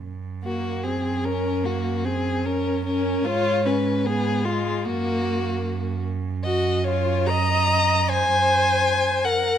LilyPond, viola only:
\new Staff \with { instrumentName = "Viola" } { \time 4/4 \key ges \lydian \tempo 4 = 75 r8 bes8 c'8 des'8 bes8 c'8 des'8 des'8 | f'8 des'8 ces'8 aes8 bes4. r8 | ges'8 f'8 ees''4 c''4. bes'8 | }